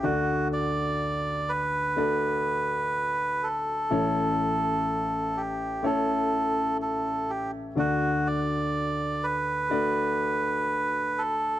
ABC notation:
X:1
M:4/4
L:1/8
Q:1/4=62
K:D
V:1 name="Melodica"
F d2 B4 A- | A3 G A2 A G | F d2 B4 A |]
V:2 name="Grand piano"
[A,DFAd]4 [A,DFAd]4 | [A,CEAc]4 [A,CEAc]4 | [A,DFAd]4 [A,DFAd]4 |]
V:3 name="Grand piano" clef=bass
[D,,D,]8 | [A,,,A,,]8 | [D,,D,]8 |]